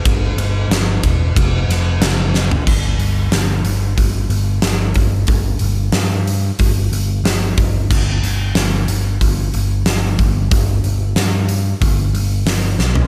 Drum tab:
CC |----------------|x---------------|----------------|x---------------|
RD |x-x-x-x-x-x-x---|----------------|----------------|----------------|
HH |----------------|--o-o-o-o-o-o-o-|o-o-o-o-o-o-o-o-|--o-o-o-o-o-o-o-|
SD |----o-----o-o-o-|----o-------o---|----o-------o---|----o-------o---|
FT |---------------o|----------------|----------------|----------------|
BD |o-----o-o-------|o-------o-----o-|o-------o-----o-|o-------o-----o-|

CC |----------------|
RD |----------------|
HH |o-o-o-o-o-o-o---|
SD |----o-------o-o-|
FT |---------------o|
BD |o-------o-------|